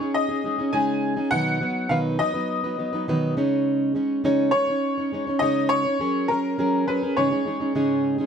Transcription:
Already playing: upright piano C#5
0.00 steel-string acoustic guitar C#4 D#4 G#4
0.14 upright piano D#5
0.29 steel-string acoustic guitar C#4 D#4 G#4
0.44 steel-string acoustic guitar G#3 C#4 D#4 G#4
0.58 steel-string acoustic guitar C#4 D#4 G#4
0.73 steel-string acoustic guitar C#3 G#3 C#4 D#4 G#4, upright piano G#5
1.17 steel-string acoustic guitar C#4 D#4 G#4
1.31 steel-string acoustic guitar B2 D#3 F#3 B3 D#4 B4, upright piano F#5
1.60 steel-string acoustic guitar F#3 B3 D#4 B4
1.89 steel-string acoustic guitar B2 D#3 F#3 B3 D#4 B4, upright piano F5
2.19 steel-string acoustic guitar F#3 B3 D#4 B4, upright piano D#5
2.34 steel-string acoustic guitar F#3 B3 D#4 B4
2.64 steel-string acoustic guitar F#3 B3 D#4 B4
2.79 steel-string acoustic guitar F#3 B3 D#4 B4
2.93 steel-string acoustic guitar F#3 B3 D#4 B4
3.08 steel-string acoustic guitar B2 D#3 F#3 B3 D#4 B4
3.37 steel-string acoustic guitar C#3 G#3 C#4 D#4 C#5
3.95 steel-string acoustic guitar G#3 C#4 D#4 C#5
4.24 steel-string acoustic guitar C#3 G#3 C#4 D#4 C#5
4.51 steel-string acoustic guitar G#3 C#4 D#4, upright piano C#5
4.55 steel-string acoustic guitar C#5
4.68 steel-string acoustic guitar C#4 D#4 C#5
4.98 steel-string acoustic guitar C#4 D#4 C#5
5.12 steel-string acoustic guitar G#3 C#4 D#4 C#5
5.27 steel-string acoustic guitar C#4 D#4 C#5
5.39 steel-string acoustic guitar C#3 G#3 C#4 D#4 C#5, upright piano D#5
5.69 upright piano C#5
5.85 steel-string acoustic guitar C#4 D#4 C#5
6.00 steel-string acoustic guitar F#3 C#4 G#4 A#4
6.28 steel-string acoustic guitar F#3 C#4 G#4 A#4, upright piano A#4
6.58 steel-string acoustic guitar F#3 C#4 G#4 A#4
6.87 steel-string acoustic guitar F#3 C#4 G#4 A#4, upright piano B4
7.03 steel-string acoustic guitar C#4 G#4 A#4
7.17 steel-string acoustic guitar G#2 C#3 G#3 C#4 D#4 G#4, upright piano C#5
7.31 steel-string acoustic guitar G#3 C#4 D#4 G#4
7.45 steel-string acoustic guitar G#3 C#4 D#4 G#4
7.60 steel-string acoustic guitar G#3 C#4 D#4 G#4
7.75 steel-string acoustic guitar G#2 C#3 G#3 C#4 D#4 G#4
8.18 steel-string acoustic guitar G#3 C#4 D#4 G#4

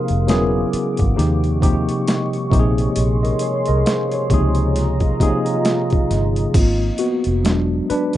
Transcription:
Already playing: tine electric piano C3 F3 A#3 D#4 G#4, ambient pad A#4 F5
0.08 fingered electric bass F1, closed hi-hat
0.27 fingered electric bass E1, tine electric piano C#3 F#3 B3 E4 G#4, snare, closed hi-hat
0.73 muted fingered electric bass stroke, closed hi-hat
0.97 fingered electric bass G#1, kick, closed hi-hat
1.15 fingered electric bass D#2, tine electric piano C3 F3 A#3 D#4 G4, ambient pad G4 D#5 C#6, closed hi-hat
1.20 snare
1.44 closed hi-hat
1.60 tine electric piano C3 F3 A#3 D#4 G4, kick, closed hi-hat
1.89 closed hi-hat
2.08 snare, closed hi-hat
2.33 closed hi-hat
2.50 fingered electric bass A#1, tine electric piano C3 F3 A#3 D#4 G4, ambient pad G#4 C#5 C6, kick, closed hi-hat
2.59 tine electric piano G#4
2.78 closed hi-hat
2.96 fingered electric bass A#1, closed hi-hat
3.23 tine electric piano A#4 D#5, closed hi-hat
3.39 tine electric piano G#4 C#5, closed hi-hat
3.66 fingered electric bass C2, tine electric piano A#4 D#5, closed hi-hat
3.86 tine electric piano C5 F5, snare, closed hi-hat
4.12 tine electric piano G#4 C#5, closed hi-hat
4.30 fingered electric bass C#2, tine electric piano C3 F3 A#3 D#4, ambient pad F4 D#5 A#5, kick, closed hi-hat
4.34 tine electric piano G#4
4.55 closed hi-hat
4.76 snare, closed hi-hat
5.00 kick, closed hi-hat
5.20 tine electric piano C3 F3 A#3 D#4 G#4, kick, closed hi-hat
5.46 closed hi-hat
5.65 snare, closed hi-hat
5.90 kick, closed hi-hat
6.11 fingered electric bass G1, snare, closed hi-hat
6.36 closed hi-hat
6.54 fingered electric bass G#1, tine electric piano A#3 C4 F4, kick, closed hi-hat, crash
6.98 tine electric piano B3 F#4, closed hi-hat
7.24 fingered electric bass F1, closed hi-hat
7.44 fingered electric bass E1, tine electric piano F#3 G#3 D4, snare, closed hi-hat
7.90 tine electric piano D4 B4, muted fingered electric bass stroke, closed hi-hat
8.13 closed hi-hat

